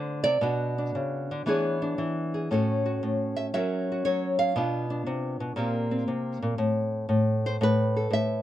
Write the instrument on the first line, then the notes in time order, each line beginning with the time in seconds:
nylon-string guitar
Already playing: D3 A3 C4 F4 C5
0.24 C3 D5
0.41 B2 B3 D4 F#4
0.78 D4
0.95 C#3
1.31 D3
1.46 E3 B3 D4 G#4 C#5
1.82 D4
1.98 E3
2.34 G#4
2.51 A2 C#4 F#4 A4 C#5
2.86 F#4
3.03 A2
3.36 E5
3.54 F#3 C#4 F#4 A#4 E5
3.92 F#4
4.05 F#3 C#5
4.39 F5
4.56 B2 B3 D4 F4
4.90 D4
5.07 C3
5.40 B2
5.56 A#2 A#3 C4 G4
5.91 C4
6.08 C3
6.42 A#2
6.58 A2
7.09 A2
7.46 C5
7.61 A2 B4
7.96 A4
8.10 A2 E5